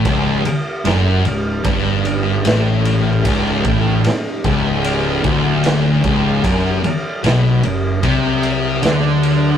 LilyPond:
<<
  \new Staff \with { instrumentName = "Synth drone" } { \time 4/4 \key fis \dorian \tempo 4 = 75 <cis dis' gis'>1~ | <cis dis' gis'>1 | <fis gis' cis''>1 | }
  \new Staff \with { instrumentName = "Distorted electric guitar" } { \clef bass \time 4/4 \key fis \dorian cis,8 r8 fis,8 cis,8 g,4 a,4 | cis,8 a,8 r8 cis,4 d,4 cis,8 | fis,8 r8 b,8 fis,8 bis,4 d4 | }
  \new Staff \with { instrumentName = "Distorted electric guitar" } { \clef bass \time 4/4 \key fis \dorian cis,8 r8 fis,8 cis,8 g,4 a,4 | cis,8 a,8 r8 cis,4 d,4 cis,8 | fis,8 r8 b,8 fis,8 bis,4 d4 | }
  \new Staff \with { instrumentName = "Fingered electric bass" } { \clef bass \time 4/4 \key fis \dorian cis,,8 r8 fis,,8 cis,,8 g,,4 a,,4 | cis,,8 a,,8 r8 cis,,4 d,,4 cis,,8 | fis,,8 r8 b,,8 fis,,8 bis,,4 d,4 | }
  \new DrumStaff \with { instrumentName = "Drums" } \drummode { \time 4/4 <bd cymr>8 cymr8 <cymr sn>8 cymr8 <bd cymr>8 cymr8 <cymr sn>8 cymr8 | <bd cymr>8 <bd cymr>8 <cymr sn>8 <bd cymr>8 cymr8 <bd cymr>8 <cymr sn>8 <bd cymr>8 | <bd cymr>8 cymr8 <cymr sn>8 cymr8 <bd cymr>8 cymr8 <cymr sn>8 cymr8 | }
>>